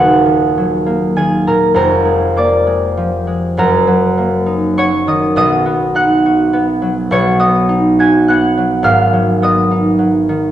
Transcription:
harp
Already playing: D#1 D#2 F#3 A#3 F#4 F#5
0.26 D#3
0.58 F#3
0.86 A#3
1.16 D#3 G#4 G#5
1.47 A#2 A#4 A#5
1.74 F1 F2 A#4 A#5
2.05 G#3
2.36 A#3 D5 D6
2.67 G#3
2.97 F3
3.27 G#3
3.57 F#1 F#2 A#4 A#5
3.87 F#3
4.18 A#3
4.46 D#4
4.77 F#3 C#5 C#6
5.07 D#3 D#5 D#6
5.36 B1 B2 D#5 D#6
5.66 B3
5.95 D#4 F#5 F#6
6.26 F#4
6.53 B3
6.82 F#3
7.11 B1 B2 C#5 C#6
7.39 B3 D#5 D#6
7.69 D#4
7.99 F#4 G#5 G#6
8.28 B3 F#5 F#6
8.57 F#3
8.83 G#1 G#2 F5 F6
9.13 F#3
9.42 B3 D#5 D#6
9.71 D#4
9.99 F#3
10.29 D#3

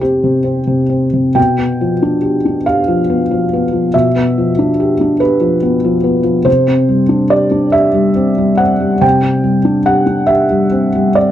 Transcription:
felt piano
Already playing: C3 C4 C5
0.00 C4 G4
0.24 C3
0.44 C4
0.67 C3
0.90 C4
1.13 C3
1.35 B2 G5
1.58 B3
1.81 F3
2.03 D4
2.22 G4
2.45 D4
2.66 G4 F5
2.88 F3
3.10 B3
3.31 F3
3.53 B3
3.72 F3
3.94 B2 E5
4.16 B3
4.38 F3
4.59 D4
4.80 G4
5.01 D4
5.20 G4 B4
5.41 F3
5.62 B3
5.85 F3
6.04 B3
6.23 F3
6.45 C3 C5
6.68 C4
6.89 G3
7.09 D4
7.30 G4 D5
7.51 D4
7.72 G4 E5
7.94 G3
8.16 C4
8.38 G3
8.57 C4 F#5
8.80 G3
9.01 C3 G5
9.23 C4
9.44 G3
9.65 D4
9.86 G4 F#5
10.06 D4
10.27 G4 E5
10.50 G3
10.72 C4
10.95 G3
11.15 C4 D5

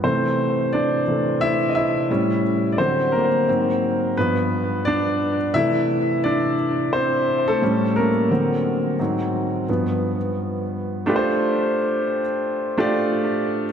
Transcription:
grand piano
0.04 C3 E3 A3 C4 C5
0.73 D4 D5
1.08 C3 E3 A3
1.41 E4 E5
1.69 D#5
1.75 E4 E5
2.10 A2 G3 C#4
2.72 D5
2.78 D3 F#3 C4 C5
3.12 A#3 A#4
3.48 G#2 F#3 C4
4.17 G2 F3 B3 B4
4.85 D4 D5
5.54 C3 E3 A3 E4 E5
6.24 D4 D5
6.93 C4 C5
7.48 A3 A4
7.62 A2 G3 C#4
7.96 A#3 A#4
8.30 D3 F#3 C4
8.99 G#2 F#3 C4
9.69 G2 F3 B3
11.06 A3 D4 F4 G4 B4
11.16 C5
12.78 A3 D4 F4 G4 D5

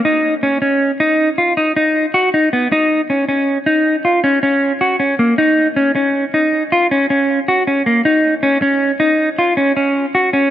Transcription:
clean electric guitar
0.05 D#4
0.43 C#4
0.62 C#4
1.00 D#4
1.38 F4
1.57 D#4
1.76 D#4
2.14 F#4
2.34 D#4
2.53 B3
2.72 D#4
3.10 C#4
3.29 C#4
3.66 D#4
4.05 F4
4.24 C#4
4.43 C#4
4.81 F#4
5.00 C#4
5.19 A#3
5.38 D#4
5.76 C#4
5.95 C#4
6.34 D#4
6.72 F4
6.91 C#4
7.10 C#4
7.48 F#4
7.67 C#4
7.86 A#3
8.05 D#4
8.43 C#4
8.62 C#4
9.00 D#4
9.39 F4
9.57 C#4
9.77 C#4
10.15 F#4
10.33 C#4

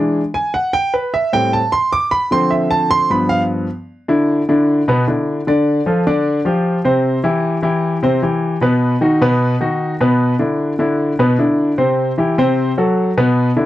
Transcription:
grand piano
Already playing: E3 G#3 D4
0.34 G#5
0.54 F#5
0.73 G5
0.94 B4
1.14 E5
1.33 A2 G3 C4 G5
1.53 A5
1.72 C6
1.93 D6
2.11 B5
2.31 D3 F3 C4 C6
2.50 E5
2.71 A5
2.91 C6
3.10 G2 F3 B3 B5
3.29 F5
4.08 D3 D4 E4
4.49 D3 D4 E4
4.88 B2 B3 B4
5.08 D3 D4 E4
5.47 D3 D4 D5
5.86 F3 F4 A4
6.07 D3 D4 D5
6.45 F3 F4 G4
6.85 C3 C4 C5
7.24 E3 E4 G4
7.62 E3 E4 G4
8.03 C3 C4 C5
8.22 E3 E4 G4
8.61 B2 B3 B4
9.01 D#3 D#4 F#4
9.21 B2 B3 B4
9.61 D#3 D#4 F#4
10.00 B2 B3 B4
10.39 D3 D4 E4
10.79 D3 D4 E4
11.19 B2 B3 B4
11.39 D3 D4 E4
11.78 C3 C4 C5
12.18 E3 E4 G4
12.38 C3 C4 C5
12.78 F#3 F#4 A4
13.18 B2 B3 B4
13.56 D3 D4 E4

